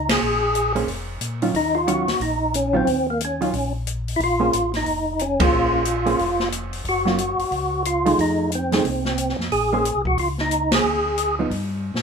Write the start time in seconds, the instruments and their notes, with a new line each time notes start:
Already playing: tonewheel organ C#2 D#4
0.09 tonewheel organ G#4, snare, ride
0.21 tonewheel organ A#1
0.55 closed hi-hat
0.75 hollow-body jazz guitar A#3 C#4 G#4 C5, open hi-hat
0.87 tonewheel organ F1, kick, open hi-hat
1.21 tonewheel organ A#2, closed hi-hat
1.42 hollow-body jazz guitar D#3 F#3 C#4 F4, open hi-hat
1.54 tonewheel organ D#2 D#4, kick, open hi-hat
1.75 tonewheel organ F4
1.87 hollow-body jazz guitar D#3 F#3 C#4 F4, tonewheel organ F#4, closed hi-hat
2.08 tonewheel organ D#2, snare, open hi-hat
2.20 tonewheel organ A#1 D#4, kick, open hi-hat
2.54 tonewheel organ C#4, closed hi-hat
2.73 hollow-body jazz guitar D#3 F#3 C#4 F4, tonewheel organ C4
2.86 tonewheel organ D#2, kick, open hi-hat
3.10 tonewheel organ A#3
3.21 closed hi-hat
3.25 tonewheel organ C#4
3.41 hollow-body jazz guitar D#3 F#3 C#4 F4, open hi-hat
3.53 tonewheel organ A#1, kick, open hi-hat
3.87 closed hi-hat
4.08 open hi-hat
4.16 tonewheel organ A#1 E4, kick, open hi-hat
4.24 tonewheel organ F4
4.40 hollow-body jazz guitar A#3 C#4 G#4 C5
4.53 tonewheel organ A1, closed hi-hat
4.73 tonewheel organ D#4, snare, open hi-hat
4.86 tonewheel organ F1, kick, open hi-hat
5.19 tonewheel organ C#4, closed hi-hat
5.40 hollow-body jazz guitar A#3 C#4 G#4 C5, tonewheel organ F4, kick, ride
5.52 tonewheel organ A#1
5.85 closed hi-hat
6.06 hollow-body jazz guitar A#3 C#4 G#4 C5, open hi-hat
6.19 tonewheel organ F1, kick, open hi-hat
6.40 snare
6.52 closed hi-hat
6.73 open hi-hat
6.85 tonewheel organ F#1, kick, open hi-hat
6.89 tonewheel organ F#4
7.05 hollow-body jazz guitar F#3 A#3 C#4 F4, snare
7.18 closed hi-hat
7.38 tonewheel organ F#1, open hi-hat
7.51 tonewheel organ C#2, kick, open hi-hat
7.85 tonewheel organ F4, closed hi-hat
8.06 hollow-body jazz guitar F3 A3 D#4 G#4, open hi-hat
8.18 tonewheel organ F2 D#4, kick, open hi-hat
8.52 tonewheel organ C4, closed hi-hat
8.72 hollow-body jazz guitar F3 A3 D#4 G#4, snare, open hi-hat
8.84 tonewheel organ C2, kick, open hi-hat
9.05 snare
9.18 closed hi-hat
9.29 snare
9.38 tonewheel organ F2, snare
9.51 tonewheel organ A#1 G#4, kick, open hi-hat
9.73 hollow-body jazz guitar A#3 C#4 G#4 C5
9.85 closed hi-hat
9.95 tonewheel organ C2
10.05 tonewheel organ B1 F#4, kick
10.17 tonewheel organ C#2 F4, kick, open hi-hat
10.38 tonewheel organ D#4, snare
10.51 closed hi-hat
10.71 tonewheel organ G#4, snare, ride
10.84 tonewheel organ D2
11.18 closed hi-hat
11.39 hollow-body jazz guitar F3 B3 D#4
11.50 tonewheel organ G2, kick, open hi-hat
11.94 tonewheel organ A#2, snare